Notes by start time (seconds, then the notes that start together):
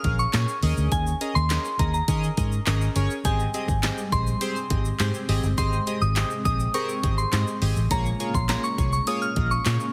0.04 A#1 C#4 G#4 A#4 F5, kick, closed hi-hat
0.19 C#6, shaker
0.33 A#2 C#4 G#4 A#4 G#5, snare, clap, closed hi-hat, shaker
0.48 shaker
0.62 D#2 C#4 G#4 A#4 D#5, open hi-hat
0.77 D2, shaker
0.92 D#2 G#5, kick, closed hi-hat, shaker
1.07 shaker
1.21 C#4 G#4 A#4 D#5, closed hi-hat, shaker
1.35 D#2 C6, shaker
1.50 C#4 G#4 A#4 D#5, snare, clap, closed hi-hat, shaker
1.65 shaker
1.79 D#2 C#4 G#4 A#4 D#5 A#5, kick, closed hi-hat
1.94 A#5, shaker
2.08 D#3 C#4 G#4 A#4 D#5, kick, closed hi-hat, shaker
2.23 shaker
2.37 G#2 C#4 G#4 A#4 D#5, kick, closed hi-hat, shaker
2.52 shaker
2.66 G#1 C#4 G#4 A#4 D#5, snare, clap, closed hi-hat, shaker
2.81 shaker
2.96 G1 C#4 G#4 A#4 C#5, closed hi-hat, shaker
3.10 shaker
3.25 G#1 G3 G#3 C4 G4 G#4 D#5 G#5, kick, closed hi-hat, shaker
3.40 shaker
3.54 C4 G4 G#4 D#5, closed hi-hat, shaker
3.68 G#1, kick, shaker
3.83 C4 G4 G#4 D#5, snare, clap, closed hi-hat, shaker
3.98 shaker
4.12 A#1 C4 G4 G#4 D#5 C6, kick, closed hi-hat, shaker
4.27 shaker
4.41 C4 G4 G#4 C5, closed hi-hat, shaker
4.56 shaker
4.70 G#1 C4 G4 G#4 D#5, kick, closed hi-hat
4.85 shaker
4.99 G#2 C4 G4 G#4 C5, snare, clap, closed hi-hat, shaker
5.14 shaker
5.29 G#1 C4 G4 G#4 D#5, open hi-hat
5.43 G1, shaker
5.57 G#1 C4 G4 G#4 D#5 C6, kick, closed hi-hat, shaker
5.73 shaker
5.87 C4 G4 G#4 D#5, closed hi-hat, shaker
6.01 G#1 D#6, shaker
6.16 C4 G4 G#4 D#5, snare, clap, closed hi-hat, shaker
6.31 shaker
6.45 A#1 C4 G4 G#4 D#5 D#6, kick, closed hi-hat, shaker
6.60 shaker
6.74 C4 G4 G#4 A#4 C#6, closed hi-hat, shaker
6.89 shaker
7.03 G#1 C4 G4 G#4 D#5, kick, closed hi-hat
7.18 C6, shaker
7.32 G#2 C4 G4 G#4 D#5, snare, clap, closed hi-hat, shaker
7.47 shaker
7.62 G#1 C4 G4 G#4 D#5, open hi-hat
7.76 A1, shaker
7.91 A#1 A#3 C#4 F4 G#4 C#5 A#5, kick, closed hi-hat, shaker
8.06 shaker
8.20 A#3 F4 G#4 C#5, closed hi-hat, shaker
8.34 A#1 C6, kick, shaker
8.49 A#3 F4 G#4 C#5 A#5, snare, clap, closed hi-hat, shaker
8.64 C#6, shaker
8.78 C2 A#3 F4 G#4 C#5, kick, closed hi-hat, shaker
8.93 C#6, shaker
9.07 A#3 F4 G#4 C#5 D#6, closed hi-hat, shaker
9.22 F6, shaker
9.36 A#1 A#3 F4 G#4 D#5, kick, closed hi-hat
9.51 C#6, shaker
9.65 A#2 A#3 F4 G#4 C#5, snare, clap, closed hi-hat, shaker
9.80 shaker